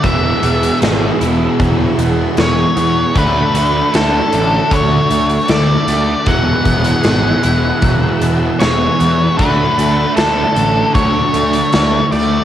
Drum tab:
HH |x-xxx-x-x-x-x-x-|x-x-x-x-x-xxx-x-|x-xxx-x-x-x-x-x-|x-x-x-x-x-xxx-x-|
SD |----o-------o---|----o-------o-o-|----o-------o---|----o-------o-o-|
BD |o-------o-------|o-------o-------|o-o-----o-------|o-------o-------|